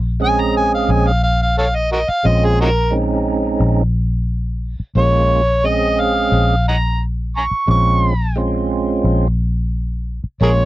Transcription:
Already playing: A#1
0.20 G#3 C4 C#4 G#4 G#5
0.41 A#5
0.57 G#5
0.75 F5
0.89 A#1 G#5
1.08 F5
1.24 F5
1.42 F5
1.58 A4 C#5 F5
1.75 D#5
1.92 F#4 A#4 D#5
2.09 F5, muted fingered electric bass stroke
2.24 A#1 G#3 C4 C#4 F4 D#5
2.45 G#4
2.61 D#4 F#4 A#4
2.91 G#3 C4 C#4 D#4
3.60 A#1
4.80 muted fingered electric bass stroke
4.95 A#1 G#3 A#3 C#4 F4 C#5
5.64 G#3 C4 C#4 G#4 D#5
6.00 F5
6.32 A#1
6.68 D#5 F#5 A#5
7.37 G#5 A#5 C#6
7.51 muted fingered electric bass stroke
7.67 A#1 G#3 C4 C#4 F4 C#6
8.36 G#3 C4 C#4 F4
9.04 A#1
10.24 muted fingered electric bass stroke
10.41 A#1 G#3 A#3 C#4 F4 G#4 A#4 C#5

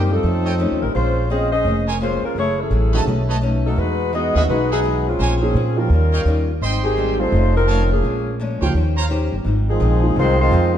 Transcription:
Already playing: F#2 C3 G3 A#3 D#4
0.11 F3 G3 C4 D#4 F4 A4
0.23 F2 D#3 A3 C#4
0.45 A4 C#5 D#5 G5
0.59 F2 D#3 A3 C#4
0.72 D#2
0.82 A1 G3 C4 D#4 A#4
0.95 A#1 G#3 A#3 C#4 F4 G#4 C5
1.30 A#3 C4 C#4 F4 G#4 C5 D#5
1.52 C#4 G#4 C5 D#5
1.65 F1 A#3 C#4 G#4 C5
1.87 A#4 C5 C#5 G#5
2.01 G#3 A#3 C#4 F4 G#4 C5
2.22 G#3 C#4 F4 A#4, muted upright bass stroke
2.35 F#1 F#3 A3 E4 G#4 C#5
2.39 G#4
2.60 E3 C#4 G#4 A4
2.70 A1 F#3 A3 E4 G#4
2.93 D#3 G#3 C#4 F#4 B4 C#5 D#5 A5
3.06 B1 B2 A3 C#4 D#4
3.29 B4 C#5 D#5 A5
3.41 B2 A3 C#4 D#4
3.66 F#3 C#4 D#4 A4
3.76 E2 E3 G#3 D#4 F#4 B4
4.13 E3 G#3 B3 D#4 F#4 G#4 D#5
4.35 D#2 D#3 G#3 B3 C#4 F#4 G#4 D#5 E5 F#5
4.48 B1 E3 G#3 D#4 F#4 B4
4.71 F#3 B3 D#4 G#4 D#5 E5 F#5
4.84 E3 G#3 D#4 F#4
5.08 G#3 C4 C#4 F4
5.19 A#1 A#3 C#4 G#4 A#4 C5 C#5 G#5
5.42 F3 A#3 C4 C#4 D#4 G#4
5.55 A#2 A#3 C#4 G#4 C5
5.77 F3 G3 A#3 C#4 D#4 F4 G4 A#4
5.90 D#2 D#3 G3 C#4
5.94 F4
6.13 C#5 D#5 F5 G5
6.25 D#2 D#3 G3 C#4 F4
6.61 G#1 G#2 G3 C4 D#4 C5 D#5 G5 C6
6.84 D#3 C4 G4 G#4
6.97 G#2 G3 C4 D#4
7.19 G3 A3 C4 D#4 F4 A4 C5
7.32 F1 F2 D#3 A3
7.36 C#4
7.57 F3 C4 D#4 A#4
7.68 F2 D#3 A3 C#4 C#5 D#5 F5 A5
7.92 F3 A#3 C#4 G#4
8.03 A#1 A#2 F3 G#3 C#4
8.40 A#2 F3 G#3 C#4
8.61 C#2 F3 A#3 D#4 G4 C5 C#5 F5 G5
8.74 D#2 D#3 C#4 G4 C5
8.97 C5 C#5 F5 A#5
9.09 D#3 C#4 G4 C5
9.32 G1
9.45 G#1 G#2 F3 C4 D#4
9.69 D#3 F3 G#3 C4 D#4 G#4
9.80 A#1 G#2 F3 C4 D#4
10.03 F3 A#3 D#4 G#4
10.16 C2 G#2 D#3 F3 G#3 C4 D#4 F4 C5
10.39 D#3 F3 G#3 C4 D#4 F4 C5
10.51 F2 G#2 F3 C4 D#4

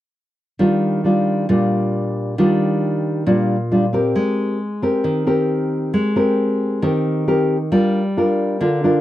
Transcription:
0.59 D#3 G3 D4 F4
1.04 G3 D4 F4
1.49 A#2 G3 D4 F4
2.38 D#3 G3 D4 F4
3.27 A#2 G3 D4 F4
3.72 G3 D4 F4
3.93 C4 G4 A#4
4.16 G#3
4.82 C4 G4 A#4
5.04 D#3
5.27 C4 G4 A#4
5.94 G#3
6.16 C4 G4 A#4
6.82 D#3 C4 G4 A#4
7.28 C4 G4 A#4
7.72 G3 D4 F4 A#4
8.17 D4 F4 A#4
8.61 D3 D4 F4 A#4
8.84 D4 F4 A#4

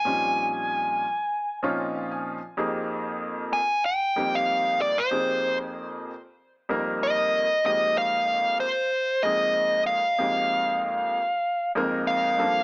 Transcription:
Already playing: G#5
0.05 A#2 F3 G3 C4 C#4 D#4
1.63 A#2 F3 C4 C#4 D#4 F4 C#5
1.80 D#5
1.95 F5
2.12 G#5
2.57 F2 A#3 C4 D#4 G4 G#4
3.53 G#5
3.86 G5
4.16 F2 G3 A#3 C4 D#4 G4
4.35 F5
4.82 D5
4.98 C5
5.11 F2 A#3 C4 D#4 G4 G#4
6.69 F2 G3 A#3 C4 D#4 A#4
7.03 D#5
7.65 F2 G#3 A#3 C4 D#4 G4 D#5
7.98 F5
8.60 C5
9.23 F2 G#3 A#3 C4 D#4 G#4 D#5
9.87 F5
10.18 F2 G#3 A#3 C4 D#4 G4
11.75 F2 G#3 A#3 C4 D#4 A#4
12.07 F5
12.38 G2 F3 A#3 C4 D4 A4

